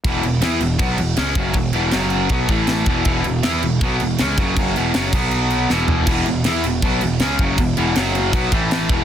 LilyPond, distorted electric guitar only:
\new Staff \with { instrumentName = "Distorted electric guitar" } { \clef bass \time 4/4 \key a \major \tempo 4 = 159 <e, b, e>8 <e, b,>8 <e b e'>8 <e, b,>8 <b, fis b>8 <e, b,>8 <cis gis cis'>8 <fis, cis fis>8 | <e, b,>8 <e, b, e>8 <fis, cis fis>4 <b, fis b>8 <a, e a>4 <e, b, e>8 | <e, b, e>8 <e, b,>8 <e b e'>8 <e, b,>8 <b, fis b>8 <e, b,>8 <cis gis cis'>8 <fis, cis fis>8 | <fis, cis fis>8 <e, b, e>8 <fis, cis fis>8 <b, fis b>4. <e, b, e>4 |
<e, b, e>8 <e, b,>8 <e b e'>8 <e, b,>8 <b, fis b>8 <e, b,>8 <cis gis cis'>8 <fis, cis fis>8 | <e, b,>8 <e, b, e>8 <fis, cis fis>4 <b, fis b>8 <a, e a>4 <e, b, e>8 | }